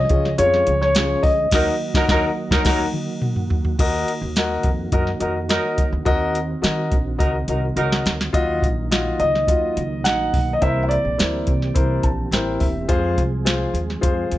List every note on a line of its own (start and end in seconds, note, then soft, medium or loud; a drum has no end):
0.00 1.49 F3 medium
0.00 1.48 G#3 medium
0.00 1.49 C#4 medium
0.00 1.47 G#4 medium
0.00 0.33 D#5 loud
0.09 0.33 C#2 medium
0.09 0.25 C#4 medium
0.09 0.25 F4 medium
0.09 0.25 G#4 medium
0.09 0.25 C#5 medium
0.09 kick loud
0.09 closed hi-hat medium
0.25 snare soft
0.38 0.62 F2 loud
0.38 0.69 C#4 medium
0.38 0.69 F4 medium
0.38 0.69 G#4 medium
0.38 0.80 C#5 medium
0.38 0.69 C#5 medium
0.38 closed hi-hat loud
0.54 snare soft
0.67 1.13 C#2 medium
0.67 closed hi-hat medium
0.82 1.21 C#5 medium
0.82 snare soft
0.95 1.26 C#4 medium
0.95 1.26 F4 medium
0.95 1.26 G#4 medium
0.95 1.27 C#5 medium
0.95 snare loud
0.95 closed hi-hat loud
1.23 1.47 D2 medium
1.23 3.18 D#5 medium
1.23 kick loud
1.23 open hi-hat medium
1.51 1.71 D#2 loud
1.51 3.76 D#3 medium
1.51 3.77 F#3 medium
1.51 1.67 F#3 loud
1.51 3.77 A#3 medium
1.51 1.67 D#4 loud
1.51 1.72 D#4 loud
1.51 3.77 F#4 medium
1.51 1.72 F#4 loud
1.51 1.72 A#4 loud
1.51 1.67 A#4 loud
1.51 1.73 D#5 loud
1.51 kick loud
1.51 snare loud
1.51 crash medium
1.94 2.06 D#2 loud
1.94 2.03 F#3 loud
1.94 2.07 D#4 loud
1.94 2.04 D#4 loud
1.94 2.07 F#4 loud
1.94 2.04 A#4 loud
1.94 2.07 A#4 loud
1.94 2.07 D#5 loud
1.94 kick loud
1.94 snare loud
2.08 2.28 D#2 medium
2.08 2.24 F#3 loud
2.08 2.28 D#4 loud
2.08 2.24 D#4 loud
2.08 2.29 F#4 loud
2.08 2.29 A#4 loud
2.08 2.24 A#4 loud
2.08 2.29 D#5 loud
2.08 kick loud
2.08 snare loud
2.51 2.63 D#2 loud
2.51 2.61 F#3 loud
2.51 2.63 D#4 loud
2.51 2.61 D#4 loud
2.51 2.63 F#4 medium
2.51 2.64 A#4 loud
2.51 2.61 A#4 loud
2.51 2.64 D#5 medium
2.51 kick loud
2.51 snare loud
2.65 2.84 D#2 loud
2.65 2.80 F#3 loud
2.65 2.84 D#4 loud
2.65 2.81 D#4 loud
2.65 2.85 F#4 loud
2.65 2.84 A#4 loud
2.65 2.80 A#4 loud
2.65 2.85 D#5 loud
2.65 kick loud
2.65 snare loud
2.65 crash medium
2.94 high tom medium
3.22 mid tom medium
3.36 mid tom medium
3.50 floor tom loud
3.65 floor tom medium
3.77 4.03 D#2 loud
3.77 8.29 D#3 medium
3.77 6.04 A#3 medium
3.77 8.30 F#4 medium
3.77 4.10 F#4 loud
3.77 4.10 A#4 loud
3.77 4.10 D#5 loud
3.77 kick loud
3.77 closed hi-hat medium
3.77 crash medium
4.08 closed hi-hat medium
4.22 4.57 D#2 medium
4.36 4.67 F#4 medium
4.36 4.67 A#4 medium
4.36 4.68 D#5 medium
4.36 snare loud
4.36 closed hi-hat medium
4.63 4.87 F2 medium
4.63 kick medium
4.63 closed hi-hat medium
4.92 5.16 F#2 medium
4.92 5.04 F#3 medium
4.92 5.04 D#4 medium
4.92 5.08 F#4 medium
4.92 5.04 A#4 medium
4.92 5.08 A#4 medium
4.92 5.08 D#5 medium
4.92 kick loud
4.92 closed hi-hat medium
5.07 snare soft
5.20 5.56 F2 medium
5.20 5.33 F#3 medium
5.20 5.33 D#4 medium
5.20 5.36 F#4 medium
5.20 5.36 A#4 medium
5.20 5.33 A#4 medium
5.20 5.36 D#5 medium
5.20 closed hi-hat medium
5.49 5.90 F#3 medium
5.49 5.90 D#4 medium
5.49 5.80 F#4 medium
5.49 5.80 A#4 medium
5.49 5.90 A#4 loud
5.49 5.81 D#5 medium
5.49 snare loud
5.49 closed hi-hat medium
5.78 5.90 D#2 medium
5.78 kick medium
5.78 closed hi-hat medium
5.92 6.04 D2 medium
6.05 6.53 D#2 loud
6.05 8.32 C4 medium
6.05 6.37 F#4 loud
6.05 6.37 A#4 loud
6.05 6.37 D#5 loud
6.05 kick loud
6.05 closed hi-hat medium
6.35 closed hi-hat medium
6.62 6.87 D#3 medium
6.62 6.93 F#4 medium
6.62 6.94 A#4 medium
6.62 6.94 D#5 medium
6.62 snare loud
6.62 closed hi-hat medium
6.92 7.15 A#1 medium
6.92 kick medium
6.92 closed hi-hat medium
7.18 7.43 C#2 medium
7.18 7.31 F#3 medium
7.18 7.31 D#4 medium
7.18 7.35 F#4 medium
7.18 7.31 A#4 loud
7.18 7.35 A#4 medium
7.18 7.35 D#5 loud
7.18 kick medium
7.18 closed hi-hat loud
7.48 7.72 C2 medium
7.48 7.61 F#3 medium
7.48 7.61 D#4 medium
7.48 7.64 F#4 medium
7.48 7.61 A#4 medium
7.48 7.64 A#4 medium
7.48 7.64 D#5 medium
7.48 closed hi-hat medium
7.76 8.00 C#2 medium
7.76 8.18 F#3 medium
7.76 8.17 D#4 medium
7.76 8.08 F#4 medium
7.76 8.17 A#4 medium
7.76 8.08 A#4 medium
7.76 8.08 D#5 medium
7.76 closed hi-hat medium
7.92 snare medium
8.06 8.29 D2 medium
8.06 snare medium
8.06 closed hi-hat medium
8.21 snare medium
8.33 8.57 D#2 medium
8.33 10.60 D#3 medium
8.33 10.60 F#3 medium
8.33 12.86 A#3 medium
8.33 10.60 D#4 medium
8.33 8.64 F4 loud
8.33 8.65 F#4 loud
8.33 8.65 D#5 loud
8.33 kick medium
8.33 closed hi-hat medium
8.62 9.09 A#1 medium
8.62 kick medium
8.62 closed hi-hat medium
8.91 9.22 F4 medium
8.91 9.22 F#4 medium
8.91 9.22 D#5 medium
8.91 snare loud
8.91 closed hi-hat medium
9.20 9.43 C#2 medium
9.20 10.07 D#5 medium
9.20 closed hi-hat medium
9.35 snare soft
9.47 9.71 D#2 medium
9.47 9.79 F4 medium
9.47 9.79 F#4 medium
9.47 9.79 D#5 medium
9.47 kick loud
9.47 closed hi-hat medium
9.77 10.06 C#2 medium
9.77 closed hi-hat medium
10.04 10.29 A#1 medium
10.04 10.36 D#4 medium
10.04 10.36 F#4 medium
10.04 10.36 D#5 medium
10.04 10.51 F#5 loud
10.04 snare loud
10.04 closed hi-hat medium
10.34 10.57 B1 medium
10.34 kick medium
10.34 open hi-hat soft
10.53 10.61 D#5 medium
10.61 10.97 C2 medium
10.61 12.87 E3 medium
10.61 14.38 C4 medium
10.61 10.93 E4 medium
10.61 12.87 G4 medium
10.61 10.93 A#4 medium
10.61 10.93 C5 loud
10.61 10.82 E5 medium
10.61 kick loud
10.61 closed hi-hat medium
10.84 10.90 E5 medium
10.89 11.99 D5 medium
10.89 closed hi-hat medium
11.05 11.16 A#1 medium
11.18 11.43 D2 medium
11.18 11.49 E4 medium
11.18 11.49 A#4 medium
11.18 11.50 C5 medium
11.18 snare loud
11.18 closed hi-hat medium
11.47 11.71 C2 medium
11.47 kick medium
11.47 closed hi-hat medium
11.62 snare soft
11.74 11.99 C2 medium
11.74 12.06 E4 medium
11.74 12.06 A#4 medium
11.74 12.06 C5 medium
11.74 kick loud
11.74 closed hi-hat medium
12.03 12.27 A#1 medium
12.03 12.30 A5 medium
12.03 kick medium
12.03 closed hi-hat medium
12.31 12.55 A1 medium
12.31 12.63 E4 medium
12.31 12.64 A#4 medium
12.31 12.64 C5 medium
12.31 12.59 G5 medium
12.31 snare loud
12.31 closed hi-hat medium
12.60 12.84 E1 medium
12.60 12.87 E5 medium
12.60 kick medium
12.60 open hi-hat soft
12.88 13.13 F2 loud
12.88 14.38 F3 medium
12.88 14.38 G#3 medium
12.88 13.20 F4 loud
12.88 14.38 G#4 medium
12.88 13.20 G#4 loud
12.88 13.20 C5 loud
12.88 kick loud
12.88 closed hi-hat medium
13.17 13.65 C2 medium
13.17 kick medium
13.17 closed hi-hat medium
13.45 13.77 F4 medium
13.45 13.77 G#4 medium
13.45 13.77 C5 medium
13.45 snare loud
13.45 closed hi-hat medium
13.73 13.97 D#2 medium
13.73 closed hi-hat medium
13.90 snare soft
14.01 14.27 F2 loud
14.01 14.33 F4 medium
14.01 14.33 G#4 medium
14.01 14.34 C5 loud
14.01 kick loud
14.01 closed hi-hat loud
14.32 14.38 D#2 medium
14.32 closed hi-hat medium